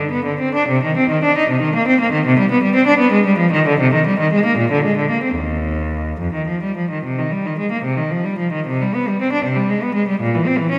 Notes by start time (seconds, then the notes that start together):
0.11 B3
0.25 D3
0.40 C4
0.55 D4
0.68 C3
0.84 D#3
0.97 C4
1.10 D#3
1.24 D4
1.38 D#4
1.49 C3
1.62 D#3
1.75 A#3
1.87 C4
2.01 A#3
2.12 D#3
2.26 C3
2.39 G3
2.51 B3
2.63 G3
2.75 C4
2.87 D4
2.98 B3
3.12 G#3
3.26 G3
3.38 F3
3.52 D#3
3.67 D3
3.80 C3
3.94 D#3
4.07 G3
4.20 D#3
4.33 G#3
4.46 A#3
4.58 A#2
4.72 D3
4.85 G#3
4.98 D3
5.11 A#3
5.24 C4
5.36 D#2
6.20 F2
6.34 D#3
6.48 F3
6.63 G3
6.77 F3
6.90 D#3
7.04 C3
7.19 D#3
7.31 G3
7.46 D#3
7.59 G#3
7.72 A#3
7.83 C3
7.97 D#3
8.11 F3
8.25 G3
8.39 F3
8.53 D#3
8.67 C3
8.81 G3
8.94 B3
9.08 G3
9.21 C4
9.33 D4
9.45 C3
9.56 G3
9.70 G#3
9.83 B3
9.95 G#3
10.08 G3
10.21 A#2
10.35 E3
10.46 C4
10.58 E3
10.71 C#4